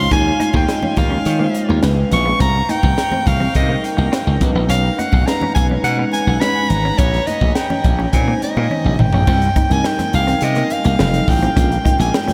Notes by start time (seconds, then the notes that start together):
Already playing: G#3 C#4 D#4 C5 C6
0.11 D#2 G#3 C#4 D#4 F4 C#5 G#5, kick, closed hi-hat, muted conga
0.40 D#4, closed hi-hat, high conga
0.53 D#2 G5, muted clean electric guitar stroke, kick, high conga
0.68 G#3 D#4 F4 D#5, snare, closed hi-hat, muted conga
0.83 C#4, high conga, low conga
0.97 D#2 F5, muted clean electric guitar stroke, kick, closed hi-hat, muted conga, high conga
1.10 G#3 C#4 D#4 F4 C#5, low conga
1.25 D#3, closed hi-hat, muted conga
1.39 G#3 A#3 D#4 F4 C5
1.54 muted clean electric guitar stroke, closed hi-hat, muted conga
1.69 D#2 A#3, high conga
1.82 C#2 G#3 B3 C#4 E4 B4, snare, closed hi-hat, muted conga
2.11 A#1 G#3 C#4 E4 B4 C#6, muted clean electric guitar stroke, closed hi-hat, low conga
2.26 B3
2.40 C2 C4 A#5, kick, closed hi-hat
2.69 D#4 G5, closed hi-hat, muted conga, high conga
2.83 C2, muted clean electric guitar stroke, kick, high conga
2.97 snare, closed hi-hat, muted conga
3.12 C4, high conga, low conga
3.26 C2 F5, muted clean electric guitar stroke, kick, closed hi-hat, muted conga, high conga
3.40 C4, low conga
3.55 C3 G3 C4 C#4 A#4 D#5, kick, closed hi-hat
3.62 D#4
3.69 A#3
3.84 G5, muted clean electric guitar stroke, closed hi-hat
3.97 C2 A#3, high conga
4.12 C4, snare, closed hi-hat
4.27 C#2
4.41 B1 G#3 C#4 D#4 B4, muted clean electric guitar stroke, kick, closed hi-hat, low conga
4.55 A#1 B3
4.69 B1 C#4 F5, closed hi-hat, muted conga
4.99 D#4 F#5, closed hi-hat, muted conga, high conga
5.12 B1, muted clean electric guitar stroke, kick, high conga
5.27 G#3 C#4 D#4 B4 A#5, snare, closed hi-hat
5.41 C#4, high conga, low conga
5.55 B1 G#5, muted clean electric guitar stroke, kick, closed hi-hat, muted conga, high conga
5.68 G#3 C#4 D#4 B4, low conga
5.84 B2 F#5, closed hi-hat
5.97 G#3 B3 C#4 D#4 B4
6.13 G#5, muted clean electric guitar stroke, closed hi-hat
6.27 B1 B3, high conga
6.41 G#3 C#4 D#4 B4 B5, snare, closed hi-hat, muted conga
6.69 G#1 G#3 C#4 D#4 B4 A#5, muted clean electric guitar stroke, closed hi-hat, muted conga, low conga
6.85 C#4
6.98 A#1 C#4 C#5, kick, closed hi-hat, muted conga
7.13 snare
7.27 D#4 D#5, closed hi-hat, muted conga, high conga
7.41 A#1, muted clean electric guitar stroke, kick, high conga
7.55 G5, snare, closed hi-hat, muted conga
7.70 C#4, high conga, low conga
7.84 A#1, muted clean electric guitar stroke, kick, closed hi-hat, high conga
7.99 C#4, low conga
8.12 A#2 G#3 C4 D#4 C5 G#5, kick, closed hi-hat
8.20 C#4
8.28 A#3
8.42 D#5, muted clean electric guitar stroke, closed hi-hat, muted conga
8.57 A#2 A#3, high conga
8.70 C#4, high tom, muted conga
8.85 A#1, mid tom
8.99 G#1 G5, muted clean electric guitar stroke, mid tom, low conga
9.13 A#1 C#4, floor tom
9.27 C2 C4, kick, crash
9.42 closed hi-hat
9.56 D#4, kick, closed hi-hat, muted conga, high conga
9.69 C2 G3 C4 D#4 A#4 G#5, muted clean electric guitar stroke, closed hi-hat, high conga
9.84 G5, snare, muted conga
9.99 C4, snare, closed hi-hat, high conga, low conga
10.13 C2 F5, muted clean electric guitar stroke, closed hi-hat, high conga
10.27 G3 C4 C#4 A#4, closed hi-hat, low conga
10.34 D#4
10.41 C3 D#5, closed hi-hat, muted conga
10.55 A#3, closed hi-hat
10.70 F5, muted clean electric guitar stroke, closed hi-hat, muted conga
10.84 C2 A#3, closed hi-hat, high conga
10.98 F1 F#3 C4 D#4 F4 A4, snare
11.14 closed hi-hat
11.28 A1 G5, muted clean electric guitar stroke, kick, open hi-hat, muted conga, low conga
11.43 C4, closed hi-hat
11.55 A#1 G#3 C#4 F4 A#4, kick, closed hi-hat
11.72 closed hi-hat
11.85 D#4, kick, closed hi-hat, muted conga, high conga
11.99 A#1 G#5, muted clean electric guitar stroke, closed hi-hat, high conga
12.14 G5, snare
12.27 G#3 C#4 F4 A4, snare, closed hi-hat, high conga, low conga